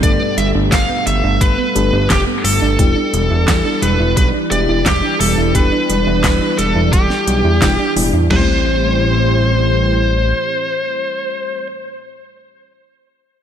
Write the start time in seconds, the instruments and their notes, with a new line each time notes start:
Already playing: analog synth pad B2 G3 A3
0.03 analog synth bass G1, fm electric piano G2 A3 B3 D4 G4 A4, synth arpeggio sound G3, lead electric guitar D5, kick, closed hi-hat
0.20 synth arpeggio sound B3
0.37 analog synth bass G1, synth arpeggio sound G3, lead electric guitar E5, closed hi-hat
0.55 analog synth bass G1, synth arpeggio sound D4
0.72 analog synth bass G1, synth arpeggio sound G3, lead electric guitar F5, kick, snare, clap, closed hi-hat
0.89 synth arpeggio sound B3
1.06 analog synth bass G1, synth arpeggio sound G3, lead electric guitar E5, closed hi-hat
1.24 analog synth bass G1, synth arpeggio sound D4
1.41 analog synth bass G1, synth arpeggio sound G3, lead electric guitar B4, kick, closed hi-hat
1.58 synth arpeggio sound B3
1.75 analog synth bass G1, fm electric piano G2 A3 B3 D4 G4 A4, synth arpeggio sound G3, closed hi-hat
1.93 analog synth bass G1, synth arpeggio sound D4
2.10 analog synth bass F1, synth arpeggio sound G3, lead electric guitar G4, kick, snare, clap, closed hi-hat
2.27 synth arpeggio sound B3
2.44 analog synth bass G1, synth arpeggio sound G3, lead electric guitar A4, open hi-hat
2.62 analog synth bass G1, synth arpeggio sound D4
2.79 analog synth bass E1, analog synth pad E3 G3 D4, fm electric piano G3 B3 D4 E4 G4, synth arpeggio sound G3, kick, closed hi-hat
2.96 synth arpeggio sound D4
3.13 analog synth bass E1, synth arpeggio sound G3, closed hi-hat
3.31 analog synth bass E1, synth arpeggio sound E4
3.48 analog synth bass E2, synth arpeggio sound G3, kick, snare, clap, closed hi-hat
3.65 synth arpeggio sound D4
3.82 analog synth bass E1, synth arpeggio sound G3, lead electric guitar B4, closed hi-hat
4.00 analog synth bass E1, synth arpeggio sound E4
4.17 analog synth bass B1, synth arpeggio sound G3, lead electric guitar B4, kick, closed hi-hat
4.34 synth arpeggio sound D4
4.51 analog synth bass E1, synth arpeggio sound G3, fm electric piano G3 B3 D4 E4 G4, lead electric guitar D5, closed hi-hat
4.69 analog synth bass E1, synth arpeggio sound E4
4.86 analog synth bass E1, synth arpeggio sound G3, lead electric guitar G4, kick, snare, clap, closed hi-hat
5.03 synth arpeggio sound D4
5.20 analog synth bass E1, synth arpeggio sound G3, lead electric guitar A4, open hi-hat
5.38 analog synth bass E1, synth arpeggio sound E4
5.55 analog synth bass E1, synth arpeggio sound G3, fm electric piano G3 B3 D4 E4 G4, lead electric guitar B4, kick, closed hi-hat
5.72 synth arpeggio sound D4
5.89 analog synth bass E1, synth arpeggio sound G3, closed hi-hat
6.07 analog synth bass E1, synth arpeggio sound E4
6.24 analog synth bass E1, synth arpeggio sound G3, kick, snare, clap, closed hi-hat
6.41 synth arpeggio sound D4
6.58 analog synth bass E1, synth arpeggio sound G3, lead electric guitar A4, closed hi-hat
6.75 analog synth bass E1, synth arpeggio sound E4
6.93 analog synth bass E1, synth arpeggio sound G3, lead electric guitar G4, kick, closed hi-hat
7.10 synth arpeggio sound D4, snare
7.27 analog synth bass B1, synth arpeggio sound G3, closed hi-hat
7.45 analog synth bass E2, synth arpeggio sound E4
7.62 analog synth bass E1, fm electric piano G3 B3 D4 E4 G4, synth arpeggio sound G3, kick, snare, clap, closed hi-hat
7.79 synth arpeggio sound D4
7.96 analog synth bass E1, fm electric piano A2 G3 B3 D4 E4 G4, synth arpeggio sound G3, open hi-hat
8.13 analog synth bass E2, synth arpeggio sound E4
8.30 analog synth bass A1, analog synth pad A2 E3 G3 C4 C5, fm electric piano G3 A3 C4 E4 G4, synth arpeggio sound G3, lead electric guitar C5, snare, floor tom, crash